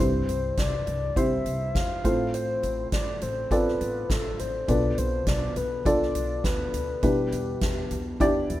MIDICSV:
0, 0, Header, 1, 5, 480
1, 0, Start_track
1, 0, Tempo, 586510
1, 1913, Time_signature, 4, 2, 24, 8
1, 7038, End_track
2, 0, Start_track
2, 0, Title_t, "Soft synth lead"
2, 0, Program_c, 0, 80
2, 0, Note_on_c, 0, 72, 103
2, 480, Note_on_c, 0, 74, 90
2, 493, Note_off_c, 0, 72, 0
2, 960, Note_on_c, 0, 76, 99
2, 973, Note_off_c, 0, 74, 0
2, 1439, Note_on_c, 0, 77, 109
2, 1451, Note_off_c, 0, 76, 0
2, 1914, Note_off_c, 0, 77, 0
2, 1919, Note_on_c, 0, 72, 103
2, 2363, Note_off_c, 0, 72, 0
2, 2399, Note_on_c, 0, 74, 88
2, 2620, Note_off_c, 0, 74, 0
2, 2639, Note_on_c, 0, 72, 87
2, 2880, Note_on_c, 0, 71, 100
2, 2893, Note_off_c, 0, 72, 0
2, 3363, Note_on_c, 0, 69, 95
2, 3376, Note_off_c, 0, 71, 0
2, 3600, Note_on_c, 0, 72, 85
2, 3613, Note_off_c, 0, 69, 0
2, 3838, Note_on_c, 0, 74, 97
2, 3850, Note_off_c, 0, 72, 0
2, 4076, Note_off_c, 0, 74, 0
2, 4079, Note_on_c, 0, 72, 91
2, 4300, Note_off_c, 0, 72, 0
2, 4319, Note_on_c, 0, 74, 92
2, 4559, Note_on_c, 0, 71, 83
2, 4571, Note_off_c, 0, 74, 0
2, 4800, Note_on_c, 0, 74, 104
2, 4812, Note_off_c, 0, 71, 0
2, 5271, Note_off_c, 0, 74, 0
2, 5276, Note_on_c, 0, 71, 93
2, 5756, Note_on_c, 0, 67, 84
2, 5768, Note_off_c, 0, 71, 0
2, 6716, Note_off_c, 0, 67, 0
2, 7038, End_track
3, 0, Start_track
3, 0, Title_t, "Upright piano"
3, 0, Program_c, 1, 0
3, 0, Control_c, 1, 64, 127
3, 0, Note_on_c, 1, 43, 50
3, 0, Note_on_c, 1, 60, 58
3, 0, Note_on_c, 1, 64, 53
3, 0, Note_on_c, 1, 67, 51
3, 0, Note_on_c, 1, 72, 69
3, 5, Control_c, 1, 64, 0
3, 163, Control_c, 1, 64, 127
3, 682, Note_off_c, 1, 43, 0
3, 890, Note_off_c, 1, 60, 0
3, 891, Note_off_c, 1, 64, 0
3, 893, Note_off_c, 1, 67, 0
3, 894, Note_off_c, 1, 72, 0
3, 950, Note_on_c, 1, 60, 66
3, 953, Note_on_c, 1, 64, 58
3, 956, Note_on_c, 1, 67, 59
3, 958, Note_on_c, 1, 72, 72
3, 1659, Note_off_c, 1, 60, 0
3, 1665, Note_off_c, 1, 72, 0
3, 1672, Note_on_c, 1, 60, 64
3, 1673, Note_off_c, 1, 64, 0
3, 1673, Note_on_c, 1, 65, 59
3, 1674, Note_on_c, 1, 45, 53
3, 1674, Note_on_c, 1, 69, 58
3, 1675, Note_off_c, 1, 67, 0
3, 1677, Note_on_c, 1, 72, 72
3, 1683, Control_c, 1, 64, 0
3, 1840, Control_c, 1, 64, 127
3, 2361, Note_off_c, 1, 45, 0
3, 2570, Note_off_c, 1, 60, 0
3, 2571, Note_off_c, 1, 65, 0
3, 2571, Note_off_c, 1, 69, 0
3, 2573, Note_off_c, 1, 72, 0
3, 2872, Note_on_c, 1, 60, 63
3, 2874, Note_on_c, 1, 65, 61
3, 2875, Note_on_c, 1, 69, 62
3, 2880, Note_on_c, 1, 74, 72
3, 3770, Note_off_c, 1, 60, 0
3, 3771, Note_off_c, 1, 65, 0
3, 3772, Note_off_c, 1, 69, 0
3, 3774, Note_off_c, 1, 74, 0
3, 3830, Note_on_c, 1, 62, 57
3, 3834, Note_on_c, 1, 65, 52
3, 3835, Note_on_c, 1, 47, 49
3, 3835, Note_on_c, 1, 69, 54
3, 3838, Note_on_c, 1, 71, 65
3, 3845, Control_c, 1, 64, 0
3, 3992, Control_c, 1, 64, 127
3, 4522, Note_off_c, 1, 47, 0
3, 4729, Note_off_c, 1, 62, 0
3, 4732, Note_off_c, 1, 65, 0
3, 4732, Note_off_c, 1, 69, 0
3, 4734, Note_off_c, 1, 71, 0
3, 4791, Note_on_c, 1, 62, 63
3, 4792, Note_on_c, 1, 65, 59
3, 4796, Note_on_c, 1, 69, 62
3, 4797, Note_on_c, 1, 74, 71
3, 5690, Note_off_c, 1, 62, 0
3, 5691, Note_off_c, 1, 65, 0
3, 5693, Note_off_c, 1, 69, 0
3, 5693, Note_off_c, 1, 74, 0
3, 5750, Note_on_c, 1, 62, 64
3, 5754, Note_on_c, 1, 47, 54
3, 5754, Note_on_c, 1, 64, 56
3, 5754, Note_on_c, 1, 67, 53
3, 5757, Note_on_c, 1, 71, 68
3, 5763, Control_c, 1, 64, 0
3, 5927, Control_c, 1, 64, 127
3, 6442, Note_off_c, 1, 47, 0
3, 6650, Note_off_c, 1, 62, 0
3, 6652, Note_off_c, 1, 64, 0
3, 6652, Note_off_c, 1, 67, 0
3, 6654, Note_off_c, 1, 71, 0
3, 6712, Note_on_c, 1, 62, 77
3, 6715, Note_on_c, 1, 64, 67
3, 6718, Note_on_c, 1, 67, 71
3, 6720, Note_on_c, 1, 74, 83
3, 7038, Note_off_c, 1, 62, 0
3, 7038, Note_off_c, 1, 64, 0
3, 7038, Note_off_c, 1, 67, 0
3, 7038, Note_off_c, 1, 74, 0
3, 7038, End_track
4, 0, Start_track
4, 0, Title_t, "Upright bass"
4, 0, Program_c, 2, 32
4, 0, Note_on_c, 2, 36, 90
4, 190, Note_off_c, 2, 36, 0
4, 232, Note_on_c, 2, 36, 76
4, 429, Note_off_c, 2, 36, 0
4, 471, Note_on_c, 2, 36, 70
4, 669, Note_off_c, 2, 36, 0
4, 714, Note_on_c, 2, 36, 81
4, 910, Note_off_c, 2, 36, 0
4, 952, Note_on_c, 2, 36, 91
4, 1149, Note_off_c, 2, 36, 0
4, 1192, Note_on_c, 2, 36, 82
4, 1389, Note_off_c, 2, 36, 0
4, 1433, Note_on_c, 2, 40, 73
4, 1674, Note_on_c, 2, 33, 78
4, 1686, Note_off_c, 2, 40, 0
4, 2067, Note_off_c, 2, 33, 0
4, 2151, Note_on_c, 2, 33, 83
4, 2349, Note_off_c, 2, 33, 0
4, 2392, Note_on_c, 2, 33, 79
4, 2589, Note_off_c, 2, 33, 0
4, 2635, Note_on_c, 2, 33, 85
4, 2831, Note_off_c, 2, 33, 0
4, 2871, Note_on_c, 2, 33, 90
4, 3069, Note_off_c, 2, 33, 0
4, 3115, Note_on_c, 2, 33, 79
4, 3311, Note_off_c, 2, 33, 0
4, 3352, Note_on_c, 2, 33, 78
4, 3549, Note_off_c, 2, 33, 0
4, 3596, Note_on_c, 2, 33, 68
4, 3792, Note_off_c, 2, 33, 0
4, 3832, Note_on_c, 2, 35, 99
4, 4030, Note_off_c, 2, 35, 0
4, 4076, Note_on_c, 2, 35, 83
4, 4272, Note_off_c, 2, 35, 0
4, 4311, Note_on_c, 2, 35, 87
4, 4509, Note_off_c, 2, 35, 0
4, 4554, Note_on_c, 2, 35, 79
4, 4751, Note_off_c, 2, 35, 0
4, 4791, Note_on_c, 2, 35, 95
4, 4989, Note_off_c, 2, 35, 0
4, 5033, Note_on_c, 2, 35, 77
4, 5231, Note_off_c, 2, 35, 0
4, 5272, Note_on_c, 2, 38, 78
4, 5470, Note_off_c, 2, 38, 0
4, 5511, Note_on_c, 2, 38, 81
4, 5709, Note_off_c, 2, 38, 0
4, 5753, Note_on_c, 2, 40, 94
4, 5951, Note_off_c, 2, 40, 0
4, 5994, Note_on_c, 2, 40, 86
4, 6191, Note_off_c, 2, 40, 0
4, 6232, Note_on_c, 2, 40, 74
4, 6430, Note_off_c, 2, 40, 0
4, 6475, Note_on_c, 2, 40, 83
4, 6672, Note_off_c, 2, 40, 0
4, 6713, Note_on_c, 2, 40, 90
4, 6911, Note_off_c, 2, 40, 0
4, 6957, Note_on_c, 2, 40, 82
4, 7038, Note_off_c, 2, 40, 0
4, 7038, End_track
5, 0, Start_track
5, 0, Title_t, "Drums"
5, 234, Note_on_c, 9, 42, 59
5, 316, Note_off_c, 9, 42, 0
5, 469, Note_on_c, 9, 42, 81
5, 471, Note_on_c, 9, 38, 93
5, 472, Note_on_c, 9, 36, 91
5, 551, Note_off_c, 9, 42, 0
5, 553, Note_off_c, 9, 38, 0
5, 554, Note_off_c, 9, 36, 0
5, 711, Note_on_c, 9, 42, 55
5, 793, Note_off_c, 9, 42, 0
5, 952, Note_on_c, 9, 36, 90
5, 955, Note_on_c, 9, 42, 67
5, 1033, Note_off_c, 9, 36, 0
5, 1037, Note_off_c, 9, 42, 0
5, 1192, Note_on_c, 9, 42, 54
5, 1274, Note_off_c, 9, 42, 0
5, 1432, Note_on_c, 9, 38, 87
5, 1433, Note_on_c, 9, 36, 92
5, 1435, Note_on_c, 9, 42, 73
5, 1514, Note_off_c, 9, 38, 0
5, 1515, Note_off_c, 9, 36, 0
5, 1517, Note_off_c, 9, 42, 0
5, 1674, Note_on_c, 9, 36, 92
5, 1675, Note_on_c, 9, 42, 66
5, 1755, Note_off_c, 9, 36, 0
5, 1757, Note_off_c, 9, 42, 0
5, 1913, Note_on_c, 9, 42, 75
5, 1995, Note_off_c, 9, 42, 0
5, 2154, Note_on_c, 9, 42, 53
5, 2236, Note_off_c, 9, 42, 0
5, 2390, Note_on_c, 9, 42, 78
5, 2392, Note_on_c, 9, 36, 90
5, 2392, Note_on_c, 9, 38, 91
5, 2472, Note_off_c, 9, 42, 0
5, 2474, Note_off_c, 9, 36, 0
5, 2474, Note_off_c, 9, 38, 0
5, 2631, Note_on_c, 9, 42, 58
5, 2713, Note_off_c, 9, 42, 0
5, 2871, Note_on_c, 9, 36, 88
5, 2875, Note_on_c, 9, 42, 73
5, 2953, Note_off_c, 9, 36, 0
5, 2957, Note_off_c, 9, 42, 0
5, 3009, Note_on_c, 9, 38, 30
5, 3091, Note_off_c, 9, 38, 0
5, 3116, Note_on_c, 9, 42, 54
5, 3198, Note_off_c, 9, 42, 0
5, 3353, Note_on_c, 9, 36, 101
5, 3353, Note_on_c, 9, 38, 96
5, 3356, Note_on_c, 9, 42, 73
5, 3435, Note_off_c, 9, 36, 0
5, 3435, Note_off_c, 9, 38, 0
5, 3438, Note_off_c, 9, 42, 0
5, 3596, Note_on_c, 9, 42, 67
5, 3677, Note_off_c, 9, 42, 0
5, 3833, Note_on_c, 9, 36, 92
5, 3833, Note_on_c, 9, 42, 76
5, 3915, Note_off_c, 9, 36, 0
5, 3915, Note_off_c, 9, 42, 0
5, 4073, Note_on_c, 9, 42, 58
5, 4073, Note_on_c, 9, 43, 56
5, 4155, Note_off_c, 9, 42, 0
5, 4155, Note_off_c, 9, 43, 0
5, 4309, Note_on_c, 9, 42, 82
5, 4311, Note_on_c, 9, 36, 91
5, 4311, Note_on_c, 9, 38, 98
5, 4391, Note_off_c, 9, 42, 0
5, 4393, Note_off_c, 9, 36, 0
5, 4393, Note_off_c, 9, 38, 0
5, 4550, Note_on_c, 9, 42, 59
5, 4552, Note_on_c, 9, 43, 58
5, 4632, Note_off_c, 9, 42, 0
5, 4634, Note_off_c, 9, 43, 0
5, 4790, Note_on_c, 9, 36, 94
5, 4795, Note_on_c, 9, 42, 72
5, 4872, Note_off_c, 9, 36, 0
5, 4877, Note_off_c, 9, 42, 0
5, 4927, Note_on_c, 9, 38, 30
5, 5009, Note_off_c, 9, 38, 0
5, 5032, Note_on_c, 9, 42, 60
5, 5033, Note_on_c, 9, 43, 51
5, 5114, Note_off_c, 9, 42, 0
5, 5115, Note_off_c, 9, 43, 0
5, 5271, Note_on_c, 9, 38, 89
5, 5272, Note_on_c, 9, 36, 98
5, 5274, Note_on_c, 9, 42, 70
5, 5353, Note_off_c, 9, 38, 0
5, 5354, Note_off_c, 9, 36, 0
5, 5356, Note_off_c, 9, 42, 0
5, 5513, Note_on_c, 9, 42, 66
5, 5595, Note_off_c, 9, 42, 0
5, 5750, Note_on_c, 9, 42, 73
5, 5753, Note_on_c, 9, 36, 90
5, 5832, Note_off_c, 9, 42, 0
5, 5835, Note_off_c, 9, 36, 0
5, 5992, Note_on_c, 9, 42, 58
5, 6074, Note_off_c, 9, 42, 0
5, 6230, Note_on_c, 9, 42, 83
5, 6232, Note_on_c, 9, 38, 98
5, 6233, Note_on_c, 9, 36, 90
5, 6311, Note_off_c, 9, 42, 0
5, 6313, Note_off_c, 9, 38, 0
5, 6315, Note_off_c, 9, 36, 0
5, 6471, Note_on_c, 9, 42, 59
5, 6473, Note_on_c, 9, 43, 57
5, 6553, Note_off_c, 9, 42, 0
5, 6555, Note_off_c, 9, 43, 0
5, 6713, Note_on_c, 9, 36, 94
5, 6715, Note_on_c, 9, 42, 73
5, 6794, Note_off_c, 9, 36, 0
5, 6797, Note_off_c, 9, 42, 0
5, 6953, Note_on_c, 9, 42, 53
5, 6954, Note_on_c, 9, 43, 50
5, 7035, Note_off_c, 9, 42, 0
5, 7036, Note_off_c, 9, 43, 0
5, 7038, End_track
0, 0, End_of_file